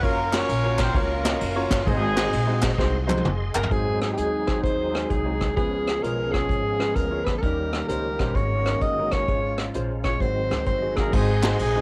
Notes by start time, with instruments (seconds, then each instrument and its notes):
Already playing: tonewheel organ C#6
0.02 upright bass F#1, grand piano A#3 C#4 F4 F#4 C#5, horn section A#3 C#4 F4 A#4, tonewheel organ A#4 F5, kick, ride
0.32 grand piano A#3 C#4 F4 F#4 A#4, horn section C#4 F4 A#4 C#5, snare, clap, ride
0.49 upright bass A#1, ride
0.63 grand piano A#3 C#4 F4 F#4 C#5
0.79 horn section C4 C5, kick, snare, clap, ride
0.94 upright bass C#2, grand piano A#3 C#4 F4 F#4 C#5, horn section A#3 C#4 F4 A#4, kick, ride
1.24 grand piano A#3 C#4 F4 F#4 D#5, snare, clap, ride
1.41 upright bass F#1, ride
1.56 grand piano A#3 C#4 F4 F#4 C#5
1.71 upright bass G1, kick, snare, clap, ride
1.87 upright bass G#1, grand piano G#2 G#3 C4 D#4 F#4 C5, horn section G#3 C4 D#4 G#4, tonewheel organ G#4 D#5 C6, kick, ride
2.16 grand piano G#3 C4 D#4 F#4 C5, snare, clap, ride
2.33 upright bass A#1, ride
2.47 grand piano G#3 C4 D#4 F#4 D#5
2.62 kick, snare, clap, ride
2.78 upright bass C2, grand piano G#3 C4 D#4 F#4 C5, kick, snare
3.07 grand piano G#3 C4 D#4 F#4 C5, clap, high tom
3.17 high tom
3.24 upright bass F#1, grand piano G#5 C6, mid tom
3.54 upright bass G1, alto saxophone A#4, grand piano F5 G#5, clap, floor tom
3.63 floor tom
3.70 upright bass G#1, grand piano G#2 G#3 D#4 F#4 C5, tonewheel organ F#3 G#3 C4 D#4 G#4, french horn section F#3 G#3 C4 D#4, alto saxophone G#4, kick, closed hi-hat
4.01 alto saxophone G#4, cross-stick, closed hi-hat
4.13 grand piano G#3 D#4 F#4, alto saxophone G4
4.17 upright bass D#2, grand piano G#4, alto saxophone G#4, closed hi-hat
4.47 grand piano G#3 D#4 F#4 C5, kick, cross-stick, closed hi-hat
4.63 upright bass D#2, alto saxophone C5, kick, closed hi-hat
4.93 grand piano G#3 D#4 F#4 G#4, cross-stick, closed hi-hat
5.09 upright bass C2, alto saxophone G#4, kick, closed hi-hat
5.25 grand piano G#3 D#4 F#4 G#4
5.41 kick, cross-stick, closed hi-hat
5.56 upright bass C#2, grand piano C#3 G#3 C#4 F4 B4, tonewheel organ F3 B3 C#4 G#4, french horn section F3 B3 C#4, alto saxophone G#4, kick, closed hi-hat
5.87 cross-stick, closed hi-hat
6.02 upright bass B1, grand piano G#3 C#4 F4 G#4, alto saxophone A#4, closed hi-hat
6.32 grand piano G#3 C#4 F4 C#5, alto saxophone G#4, kick, cross-stick, closed hi-hat
6.49 upright bass G#1, kick, closed hi-hat
6.79 grand piano G#3 C#4 F4 B4, cross-stick, closed hi-hat
6.95 upright bass D2, alto saxophone A#4, kick, closed hi-hat
7.10 grand piano G#3 C#4 F4 C#5
7.24 alto saxophone B4, kick, cross-stick, closed hi-hat
7.38 tonewheel organ A#3, alto saxophone A4 A#4
7.42 upright bass D#2, tonewheel organ D#3 G3 G4, french horn section D#3 G3 A#3, grand piano D#3 G3 C#4 D#4 A#4, kick, closed hi-hat
7.72 cross-stick, closed hi-hat
7.88 upright bass C#2, grand piano G3 C#4 D#4 C5, alto saxophone A#4, closed hi-hat
8.19 upright bass A#1, grand piano G3 C#4 D#4 C5, kick, cross-stick, closed hi-hat
8.35 upright bass G#1, grand piano G#2, french horn section F#3 G#3 A#3, tonewheel organ G#3 F#4, alto saxophone C#5, kick, closed hi-hat
8.65 grand piano G#3 C#4 F#4 A#4, cross-stick, closed hi-hat
8.81 upright bass G1, alto saxophone D#5, kick, closed hi-hat
8.99 grand piano G#3 C#4 F#4 A#4
9.11 alto saxophone C#5, kick, cross-stick, closed hi-hat
9.28 upright bass G#1, grand piano G#2 G#3 C#4 F4 C#5, french horn section F3 F4, tonewheel organ F4, kick, closed hi-hat
9.57 cross-stick, closed hi-hat
9.74 upright bass A#1, grand piano G#3 C#4 F4 C5, closed hi-hat
10.04 grand piano G#3 C#4 F4 C#5, alto saxophone C#5, kick, cross-stick, closed hi-hat
10.20 upright bass G#1, grand piano G#2, tonewheel organ D#3 F#3 C4 F#4, french horn section F#3 C4 D#4, alto saxophone C5, kick, closed hi-hat
10.51 upright bass C#2, grand piano G#3 D#4 F#4 C5, cross-stick, closed hi-hat
10.66 upright bass G1, alto saxophone C5, kick, closed hi-hat
10.82 grand piano G#3 D#4 F#4 G#4
10.96 horn section A#3 A#4, alto saxophone G#4, kick, cross-stick, closed hi-hat
11.12 upright bass G#1, grand piano G#2 G#3 C4 D#4 F#4 C5, horn section G#3 C4 D#4 G#4, tonewheel organ G#4 D#5 F#5 C6, kick, crash
11.43 grand piano G#3 C4 D#4 F#4 C5, snare, clap, ride
11.59 upright bass A#1, horn section G#3 C4 D#4 G#4, ride
11.75 grand piano G#3 C4 D#4 F#4 G#4